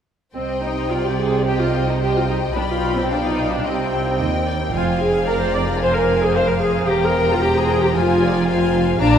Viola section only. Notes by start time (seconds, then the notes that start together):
0.35 C4
0.64 D#4
0.91 F4
1.05 G4
1.19 G#4
1.46 G4
1.59 F4
1.87 D#4
2.01 G4
2.15 F4
2.29 D#4
2.56 D4
2.70 F4
2.97 C4
3.10 D4
3.24 D#4
3.51 D4
3.65 C4
4.74 F4
5.00 G#4
5.27 A#4
5.41 C5
5.54 D5
5.82 C5
5.95 A#4
6.22 G#4
6.35 C5
6.48 A#4
6.62 G#4
6.88 G4
7.02 A#4
7.30 F4
7.42 G4
7.55 G#4
7.82 G4
7.95 F4
9.01 D4